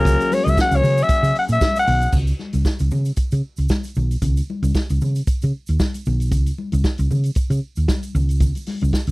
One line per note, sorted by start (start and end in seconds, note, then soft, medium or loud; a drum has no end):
0.00 0.16 C#2 loud
0.00 1.83 F#3 medium
0.00 1.83 A#3 medium
0.00 1.84 C#4 medium
0.00 1.84 G#4 medium
0.00 0.35 A#4 loud
0.05 kick loud
0.05 closed hi-hat medium
0.05 muted conga soft
0.05 low conga medium
0.05 shaker medium
0.20 closed hi-hat soft
0.20 muted conga soft
0.20 shaker medium
0.32 0.46 C#5 loud
0.32 open hi-hat medium
0.32 high conga medium
0.32 shaker medium
0.44 0.54 C#2 loud
0.44 0.51 D#5 medium
0.44 closed hi-hat soft
0.44 high conga loud
0.44 shaker medium
0.49 0.59 E5 loud
0.57 0.77 F#5 loud
0.57 kick loud
0.57 snare loud
0.57 shaker medium
0.71 0.79 C#2 loud
0.71 closed hi-hat medium
0.71 muted conga soft
0.71 high conga medium
0.71 shaker medium
0.76 1.04 C#5 loud
0.83 1.01 C#3 medium
0.83 open hi-hat medium
0.83 low conga medium
0.83 shaker medium
0.97 closed hi-hat soft
0.97 shaker medium
1.03 1.38 E5 loud
1.09 muted fingered electric bass stroke medium
1.09 kick loud
1.09 closed hi-hat medium
1.09 muted conga soft
1.09 shaker medium
1.23 1.31 C#3 medium
1.23 closed hi-hat soft
1.23 shaker medium
1.35 1.45 F#5 medium
1.35 open hi-hat medium
1.48 1.57 A#2 medium
1.48 closed hi-hat soft
1.48 shaker medium
1.52 1.75 E5 medium
1.61 kick loud
1.61 snare loud
1.61 muted conga soft
1.61 high conga medium
1.61 shaker medium
1.76 2.13 F#5 loud
1.76 closed hi-hat medium
1.76 shaker medium
1.87 2.06 B1 loud
1.87 open hi-hat medium
1.87 low conga medium
2.01 closed hi-hat soft
2.01 shaker medium
2.12 2.31 C#2 medium
2.12 kick loud
2.12 crash medium
2.12 low conga medium
2.12 shaker medium
2.27 closed hi-hat soft
2.27 shaker medium
2.39 snare soft
2.39 high conga medium
2.53 2.62 C#2 medium
2.53 closed hi-hat soft
2.53 high conga medium
2.53 shaker soft
2.65 kick medium
2.65 snare medium
2.65 shaker medium
2.79 2.88 C#2 medium
2.79 closed hi-hat soft
2.79 muted conga soft
2.79 high conga soft
2.79 shaker medium
2.91 3.10 C#3 medium
2.91 low conga medium
2.91 shaker soft
3.05 closed hi-hat soft
3.05 shaker medium
3.16 muted fingered electric bass stroke soft
3.16 kick medium
3.16 closed hi-hat medium
3.16 muted conga soft
3.16 shaker medium
3.31 3.41 C#3 medium
3.31 closed hi-hat soft
3.31 muted conga soft
3.31 shaker medium
3.57 3.66 C#2 medium
3.57 closed hi-hat soft
3.57 shaker soft
3.69 kick medium
3.69 snare loud
3.69 muted conga soft
3.69 high conga medium
3.69 shaker medium
3.84 closed hi-hat soft
3.84 muted conga soft
3.84 shaker medium
3.95 4.15 B1 medium
3.95 low conga medium
3.95 shaker soft
4.11 closed hi-hat soft
4.11 shaker medium
4.22 4.40 C#2 loud
4.22 kick loud
4.22 closed hi-hat medium
4.22 muted conga soft
4.22 low conga medium
4.22 shaker medium
4.37 closed hi-hat soft
4.37 muted conga soft
4.37 shaker medium
4.50 high conga medium
4.62 4.71 C#2 loud
4.62 closed hi-hat soft
4.62 high conga medium
4.62 shaker medium
4.75 kick loud
4.75 snare medium
4.75 muted conga soft
4.75 shaker medium
4.89 4.98 C#2 medium
4.89 closed hi-hat soft
4.89 muted conga soft
4.89 high conga soft
4.89 shaker medium
5.01 5.20 C#3 medium
5.01 low conga medium
5.01 shaker medium
5.15 closed hi-hat soft
5.15 shaker medium
5.27 muted fingered electric bass stroke soft
5.27 kick loud
5.27 closed hi-hat medium
5.27 shaker medium
5.42 5.51 C#3 medium
5.42 closed hi-hat soft
5.42 muted conga soft
5.42 shaker soft
5.67 5.77 D#2 medium
5.67 closed hi-hat soft
5.67 shaker soft
5.80 kick loud
5.80 snare medium
5.80 high conga medium
5.80 shaker medium
5.94 closed hi-hat soft
5.94 muted conga soft
5.94 shaker medium
6.06 6.32 B1 medium
6.06 low conga medium
6.06 shaker medium
6.20 closed hi-hat soft
6.20 shaker medium
6.31 6.50 C#2 loud
6.31 kick loud
6.31 closed hi-hat soft
6.31 muted conga soft
6.31 low conga medium
6.31 shaker medium
6.46 closed hi-hat soft
6.46 muted conga soft
6.46 shaker soft
6.58 high conga medium
6.72 6.81 C#2 loud
6.72 closed hi-hat soft
6.72 high conga medium
6.72 shaker medium
6.84 kick medium
6.84 snare loud
6.84 muted conga soft
6.84 shaker medium
6.98 7.07 C#2 loud
6.98 closed hi-hat soft
6.98 muted conga soft
6.98 high conga soft
6.98 shaker soft
7.11 7.29 C#3 medium
7.11 low conga medium
7.11 shaker medium
7.23 closed hi-hat soft
7.23 shaker soft
7.35 muted fingered electric bass stroke soft
7.35 kick loud
7.35 closed hi-hat medium
7.35 shaker medium
7.50 7.59 C#3 medium
7.50 closed hi-hat soft
7.50 muted conga soft
7.50 shaker medium
7.76 7.85 D#2 medium
7.76 closed hi-hat soft
7.76 shaker medium
7.88 kick medium
7.88 snare loud
7.88 muted conga soft
7.88 high conga medium
7.88 shaker medium
8.03 closed hi-hat soft
8.03 shaker medium
8.15 8.51 C#2 loud
8.15 low conga medium
8.15 shaker medium
8.29 closed hi-hat soft
8.29 shaker medium
8.40 kick loud
8.40 closed hi-hat medium
8.40 low conga medium
8.40 shaker medium
8.55 closed hi-hat soft
8.55 muted conga soft
8.55 shaker medium
8.66 snare soft
8.66 open hi-hat medium
8.66 high conga medium
8.81 8.90 C#2 loud
8.81 closed hi-hat soft
8.81 high conga medium
8.81 shaker medium
8.93 kick medium
8.93 snare medium
8.93 shaker medium
9.07 9.11 C#2 medium
9.07 closed hi-hat soft
9.07 high conga soft